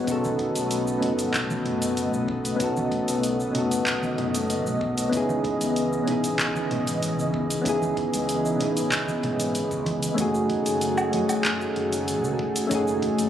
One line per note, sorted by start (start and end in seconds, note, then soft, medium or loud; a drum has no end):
0.00 10.14 B3 medium
0.04 0.45 B1 loud
0.04 5.09 A3 medium
0.04 0.97 B3 medium
0.04 0.98 C#4 medium
0.04 0.99 D#4 medium
0.04 10.14 D#5 medium
0.04 kick loud
0.04 open hi-hat medium
0.04 cabasa medium
0.08 10.14 C#3 medium
0.08 1.00 F#4 medium
0.08 1.01 A4 loud
0.24 high conga medium
0.24 cabasa soft
0.39 kick medium
0.39 open hi-hat soft
0.55 1.04 B1 medium
0.55 open hi-hat soft
0.55 cabasa medium
0.71 open hi-hat medium
0.71 cabasa medium
0.87 cabasa soft
0.99 1.34 F#1 medium
0.99 2.55 B3 medium
0.99 2.56 C#4 medium
0.99 2.56 D#4 medium
0.99 open hi-hat soft
0.99 low conga medium
1.04 2.57 F#4 medium
1.04 2.58 A4 medium
1.19 open hi-hat soft
1.19 cabasa medium
1.34 1.53 B1 loud
1.34 kick medium
1.34 clap medium
1.34 open hi-hat soft
1.34 cabasa medium
1.50 high conga medium
1.50 cabasa soft
1.65 2.13 F#1 medium
1.65 open hi-hat soft
1.65 low conga medium
1.82 open hi-hat soft
1.82 cabasa medium
1.97 open hi-hat soft
1.97 cabasa soft
2.13 2.51 B1 medium
2.13 cabasa soft
2.28 kick medium
2.45 open hi-hat soft
2.45 cabasa medium
2.56 2.98 B1 loud
2.56 3.49 B3 medium
2.56 3.50 C#4 medium
2.56 3.51 D#4 medium
2.56 kick loud
2.56 open hi-hat medium
2.60 3.52 F#4 medium
2.60 3.53 A4 loud
2.60 cabasa medium
2.77 high conga medium
2.77 cabasa soft
2.92 kick medium
2.92 open hi-hat soft
3.08 3.55 B1 loud
3.08 open hi-hat soft
3.08 cabasa medium
3.23 open hi-hat medium
3.23 cabasa soft
3.40 cabasa soft
3.51 3.86 F#1 medium
3.51 5.07 B3 medium
3.51 5.08 C#4 medium
3.51 5.09 D#4 medium
3.51 open hi-hat soft
3.51 low conga medium
3.57 5.10 F#4 medium
3.57 5.11 A4 medium
3.71 open hi-hat soft
3.71 cabasa medium
3.86 4.06 B1 medium
3.86 kick medium
3.86 clap medium
3.86 open hi-hat soft
3.86 cabasa medium
4.03 high conga medium
4.03 cabasa soft
4.18 4.66 F#1 medium
4.18 open hi-hat soft
4.18 low conga medium
4.34 open hi-hat soft
4.34 cabasa medium
4.50 open hi-hat soft
4.50 cabasa soft
4.66 5.03 B1 medium
4.66 cabasa soft
4.81 kick medium
4.98 open hi-hat soft
4.98 cabasa medium
5.09 5.50 C#2 medium
5.09 10.14 E3 medium
5.09 6.02 B3 medium
5.09 6.03 C#4 medium
5.09 6.04 D#4 medium
5.09 kick loud
5.09 open hi-hat medium
5.09 cabasa soft
5.15 6.05 E4 medium
5.15 6.06 G#4 loud
5.29 high conga medium
5.29 cabasa soft
5.44 kick medium
5.44 open hi-hat soft
5.61 6.07 C#2 loud
5.61 open hi-hat soft
5.61 cabasa medium
5.76 open hi-hat medium
5.76 cabasa medium
5.93 cabasa soft
6.04 6.39 G#1 medium
6.04 7.60 B3 medium
6.04 7.61 C#4 medium
6.04 7.62 D#4 medium
6.04 open hi-hat medium
6.08 7.63 E4 medium
6.08 7.64 G#4 medium
6.08 low conga medium
6.24 open hi-hat soft
6.24 cabasa medium
6.39 6.59 C#2 loud
6.39 kick medium
6.39 clap medium
6.39 open hi-hat medium
6.39 cabasa medium
6.56 high conga medium
6.56 cabasa soft
6.71 7.19 G#1 medium
6.71 open hi-hat soft
6.71 low conga medium
6.87 open hi-hat soft
6.87 cabasa medium
7.03 open hi-hat soft
7.03 cabasa soft
7.19 7.56 C#2 medium
7.19 cabasa soft
7.34 kick medium
7.50 open hi-hat soft
7.50 cabasa medium
7.61 8.03 C#2 medium
7.61 8.54 B3 medium
7.61 8.56 C#4 medium
7.61 8.56 D#4 medium
7.61 kick loud
7.66 8.57 E4 medium
7.66 8.58 G#4 loud
7.66 open hi-hat medium
7.66 cabasa medium
7.82 high conga medium
7.82 cabasa soft
7.97 kick medium
7.97 open hi-hat soft
8.14 8.60 C#2 loud
8.14 open hi-hat soft
8.14 cabasa medium
8.29 open hi-hat medium
8.29 cabasa soft
8.45 cabasa soft
8.56 8.92 G#1 medium
8.56 10.13 B3 medium
8.56 10.13 C#4 medium
8.56 10.14 D#4 medium
8.56 low conga medium
8.61 10.15 E4 medium
8.61 10.16 G#4 medium
8.61 open hi-hat soft
8.77 open hi-hat soft
8.77 cabasa medium
8.92 9.11 C#2 loud
8.92 kick medium
8.92 clap medium
8.92 open hi-hat medium
8.92 cabasa medium
9.08 high conga medium
9.08 cabasa soft
9.23 9.61 G#1 medium
9.23 open hi-hat soft
9.23 low conga medium
9.40 open hi-hat soft
9.40 cabasa medium
9.55 open hi-hat medium
9.55 cabasa soft
9.71 10.09 C#2 medium
9.71 kick medium
9.71 cabasa soft
9.86 kick loud
9.86 open hi-hat soft
9.86 high conga medium
10.03 open hi-hat soft
10.03 cabasa medium
10.14 10.56 F#1 medium
10.14 11.07 A3 medium
10.14 13.29 A3 medium
10.14 11.08 C#4 medium
10.14 11.09 D#4 medium
10.14 13.29 F#4 medium
10.14 kick loud
10.14 open hi-hat medium
10.14 cabasa medium
10.19 13.29 D#3 medium
10.19 11.10 F#4 medium
10.19 13.29 G#4 medium
10.19 11.11 G#4 loud
10.35 cabasa soft
10.50 kick loud
10.50 open hi-hat soft
10.66 11.14 F#1 loud
10.66 open hi-hat soft
10.66 cabasa medium
10.81 open hi-hat medium
10.81 cabasa medium
10.98 cabasa soft
10.98 low woodblock medium
11.09 11.23 F#2 medium
11.09 12.65 A3 medium
11.09 12.66 C#4 medium
11.09 12.67 D#4 medium
11.09 open hi-hat medium
11.15 12.68 F#4 medium
11.15 12.69 G#4 medium
11.29 open hi-hat soft
11.29 cabasa medium
11.29 low woodblock medium
11.44 11.64 F#1 medium
11.44 kick medium
11.44 clap medium
11.44 open hi-hat medium
11.44 cabasa medium
11.61 cabasa soft
11.76 12.24 F#1 medium
11.76 open hi-hat soft
11.93 open hi-hat soft
11.93 cabasa medium
12.08 open hi-hat medium
12.08 cabasa soft
12.24 12.33 C#2 loud
12.24 cabasa soft
12.39 kick loud
12.56 open hi-hat soft
12.56 cabasa medium
12.67 13.08 F#1 loud
12.67 13.29 A3 loud
12.67 13.29 C#4 medium
12.67 13.29 D#4 medium
12.67 kick loud
12.67 open hi-hat medium
12.71 13.29 F#4 medium
12.71 13.29 G#4 loud
12.71 cabasa medium
12.87 cabasa soft
13.02 kick loud
13.02 open hi-hat soft
13.19 13.29 F#1 loud
13.19 open hi-hat soft
13.19 cabasa medium